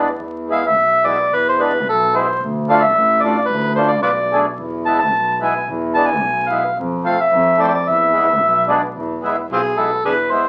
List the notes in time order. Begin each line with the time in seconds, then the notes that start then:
Already playing: E2
0.21 E2
0.49 G#3 B3 E4 F5
0.66 E5
0.76 B1
1.04 G#3 B3 E4 D5
1.31 E2 B4
1.49 C5
1.58 G#3 B3 D4 B4
1.85 B1 A4
2.13 G#3 B3 E4 C5
2.41 D2
2.69 A3 D4 F4 F5
2.83 E5
2.95 A1
3.22 A3 D4 F4 D5
3.47 D2 B4
3.75 A3 D4 F4 C5
3.88 D5
4.02 B1 F4 B4 D5
4.32 A3 D4 G#4
4.58 E2
4.86 G#3 B3 E4 A5
4.99 A5
5.13 B1
5.40 G#3 B3 E4 G#5
5.68 E2
5.95 G#3 B3 D4 A5
6.06 G#5
6.22 B1
6.48 G#3 B3 E4 F5
6.77 F2
7.04 A3 C4 F4 F5
7.21 E5
7.32 F2
7.57 A3 C4 E4 D5
7.63 C5
7.68 D5
7.74 D5
7.88 E2 E5
8.13 G#3 B3 E4
8.41 B1
8.68 G#3 B3 D4
8.95 E2
9.22 G#3 B3 E4
9.49 B1 C4 F4 G#4
9.77 G#3 B3 E4 A4
10.04 E2 D4 G#4 B4
10.30 G#3 B3 E4 C5